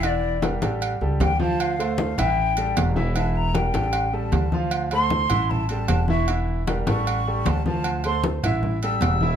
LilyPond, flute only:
\new Staff \with { instrumentName = "Flute" } { \time 4/4 \key d \minor \tempo 4 = 154 d''4 r2 g''8 a''8 | f''4. g''4. r4 | a''8 bes''8 g''4. a''4. | r8 c'''4. a''8 a''4 cis'''8 |
r4. cis'''4. a''8 a''8~ | a''8 c'''8 r4. e'''4. | }